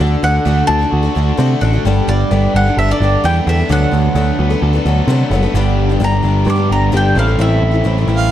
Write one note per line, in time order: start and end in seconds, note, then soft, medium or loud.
0.00 0.15 D2 medium
0.00 0.21 D3 medium
0.00 0.23 D4 medium
0.00 0.23 F#4 medium
0.00 0.24 A4 medium
0.23 0.38 D2 medium
0.23 0.44 D3 medium
0.23 0.45 D4 medium
0.23 0.46 F#4 medium
0.23 0.47 A4 medium
0.23 0.67 F#5 medium
0.45 0.61 D2 medium
0.45 0.81 D3 medium
0.45 1.38 A3 medium
0.45 0.81 D4 medium
0.45 0.81 F#4 medium
0.45 0.80 A4 medium
0.67 0.84 D2 medium
0.67 1.14 D4 medium
0.67 1.61 A5 loud
0.81 1.05 D4 soft
0.81 1.03 F#4 medium
0.81 1.02 A4 soft
0.91 1.08 D2 loud
0.91 1.84 F#4 medium
1.03 1.15 D4 soft
1.03 1.16 F#4 medium
1.03 1.15 A4 medium
1.15 1.31 D2 medium
1.15 1.36 D3 medium
1.15 1.37 D4 medium
1.15 1.38 F#4 medium
1.15 1.39 A4 medium
1.37 1.54 C3 medium
1.37 1.60 D3 medium
1.37 1.87 A3 medium
1.37 1.61 D4 medium
1.37 1.62 F#4 medium
1.37 1.63 A4 loud
1.61 1.77 A1 medium
1.61 1.73 D3 medium
1.61 1.74 D4 medium
1.61 1.73 F#4 medium
1.61 1.72 A4 medium
1.61 1.83 F#5 medium
1.73 1.85 D4 soft
1.73 1.85 F#4 soft
1.73 1.85 A4 soft
1.85 2.00 G1 medium
1.85 2.06 G3 medium
1.85 2.09 B3 medium
1.85 2.07 D4 medium
1.85 2.09 A4 medium
2.08 2.23 G1 medium
2.08 2.30 G3 medium
2.08 2.32 B3 medium
2.08 2.31 D4 medium
2.08 2.32 A4 medium
2.08 2.51 D5 medium
2.31 2.46 G1 medium
2.31 2.66 G3 medium
2.31 2.67 B3 medium
2.31 2.66 D4 medium
2.31 2.65 A4 medium
2.54 2.69 G1 medium
2.54 3.00 D4 medium
2.54 2.78 F#5 loud
2.66 2.89 B3 medium
2.66 2.90 D4 soft
2.66 2.87 A4 medium
2.77 2.92 G1 loud
2.77 3.70 A4 medium
2.77 2.90 E5 medium
2.88 3.01 B3 medium
2.88 3.02 D4 soft
2.88 3.00 A4 medium
2.88 3.26 D5 medium
3.00 3.15 G1 medium
3.00 3.22 G3 medium
3.00 3.24 B3 medium
3.00 3.24 D4 medium
3.04 3.25 A4 medium
3.24 3.39 E2 medium
3.24 3.46 G3 medium
3.24 3.48 B3 medium
3.24 3.47 D4 medium
3.24 3.48 A4 medium
3.24 3.48 G5 loud
3.47 3.62 E2 medium
3.47 3.59 G3 medium
3.47 3.59 B3 medium
3.47 3.59 D4 medium
3.47 3.58 A4 medium
3.47 3.72 E5 medium
3.59 3.70 B3 soft
3.59 3.70 D4 soft
3.59 3.70 A4 medium
3.69 3.85 D2 loud
3.69 3.93 D3 medium
3.69 3.90 F#3 medium
3.69 3.92 B3 medium
3.69 3.92 D4 medium
3.69 3.93 A4 medium
3.69 5.29 F#5 loud
3.91 4.08 D2 medium
3.91 4.15 F#3 medium
3.91 4.16 B3 medium
3.91 4.15 D4 medium
3.91 4.16 A4 medium
4.15 4.30 D2 medium
4.15 4.50 D3 medium
4.15 4.51 F#3 medium
4.15 5.07 A3 medium
4.15 4.51 B3 medium
4.15 4.51 D4 medium
4.15 4.49 A4 medium
4.39 4.54 D2 medium
4.39 4.84 B3 medium
4.50 4.74 B3 medium
4.50 4.75 D4 medium
4.50 4.72 A4 medium
4.62 4.77 D2 medium
4.62 5.55 A4 medium
4.73 4.86 B3 medium
4.73 4.85 D4 medium
4.73 4.85 A4 medium
4.85 5.00 D2 medium
4.85 5.08 F#3 medium
4.85 5.09 B3 medium
4.85 5.08 D4 medium
4.85 5.09 A4 medium
5.07 5.23 C3 medium
5.07 5.31 D3 medium
5.07 5.30 F#3 medium
5.07 5.55 A3 medium
5.07 5.32 B3 medium
5.07 5.31 D4 loud
5.07 5.33 A4 medium
5.30 5.46 F#1 loud
5.30 5.43 F#3 medium
5.30 5.43 B3 medium
5.30 5.44 D4 medium
5.35 5.41 A4 medium
5.43 5.55 B3 medium
5.43 5.56 D4 soft
5.43 5.54 A4 medium
5.54 5.97 G1 medium
5.54 5.89 G2 medium
5.54 5.90 D3 medium
5.54 5.90 G3 medium
5.54 5.90 B3 medium
5.54 5.90 D4 medium
5.54 5.89 G4 medium
5.90 6.00 G3 soft
5.90 6.01 B3 medium
5.90 6.01 D4 medium
5.90 6.01 G4 medium
6.00 6.21 G1 medium
6.00 6.12 G2 medium
6.00 6.13 D3 medium
6.00 6.13 G3 medium
6.00 6.12 B3 medium
6.00 6.12 D4 medium
6.00 6.10 G4 medium
6.04 6.47 A#5 loud
6.11 6.21 G3 soft
6.11 6.23 B3 soft
6.11 6.24 D4 soft
6.11 6.24 G4 soft
6.23 6.45 G1 medium
6.23 6.92 G2 medium
6.23 6.92 D3 medium
6.23 6.44 G3 medium
6.23 6.45 B3 medium
6.23 6.46 D4 medium
6.23 6.47 G4 medium
6.45 6.68 G2 medium
6.45 6.58 G3 medium
6.45 6.57 B3 medium
6.45 6.56 D4 medium
6.45 6.55 G4 medium
6.50 6.71 D6 medium
6.56 6.91 G3 soft
6.56 6.92 B3 soft
6.56 6.92 D4 soft
6.56 6.92 G4 medium
6.70 6.91 G1 medium
6.70 6.94 A#5 medium
6.92 7.14 G1 medium
6.92 7.16 G2 medium
6.92 7.16 D3 medium
6.92 7.15 G3 medium
6.92 7.16 B3 medium
6.92 7.16 D4 medium
6.92 7.17 G4 medium
6.97 7.17 G5 medium
7.15 7.37 A1 medium
7.15 7.83 A2 medium
7.15 7.27 E3 medium
7.15 7.84 A3 loud
7.15 7.28 C4 medium
7.15 7.28 E4 medium
7.15 7.26 A4 medium
7.15 7.40 F5 medium
7.28 7.39 C4 soft
7.28 7.39 E4 soft
7.28 7.39 A4 soft
7.38 7.60 A1 medium
7.38 7.74 A2 medium
7.38 7.74 E3 medium
7.38 7.74 C4 medium
7.38 7.72 E4 medium
7.38 7.70 A4 medium
7.38 8.30 E5 medium
7.62 7.83 A1 medium
7.71 7.84 C4 medium
7.71 7.85 E4 soft
7.71 7.84 A4 medium
7.84 8.06 A1 medium
7.84 7.96 A2 medium
7.84 7.97 E3 medium
7.84 8.31 A3 medium
7.84 7.97 C4 medium
7.84 7.97 E4 medium
7.84 7.97 A4 medium
7.98 8.07 C4 soft
7.98 8.08 E4 medium
7.98 8.08 A4 medium
8.07 8.29 A1 medium
8.07 8.29 E3 medium
8.07 8.30 C4 medium
8.07 8.31 E4 medium
8.07 8.31 A4 medium
8.17 8.31 F5 medium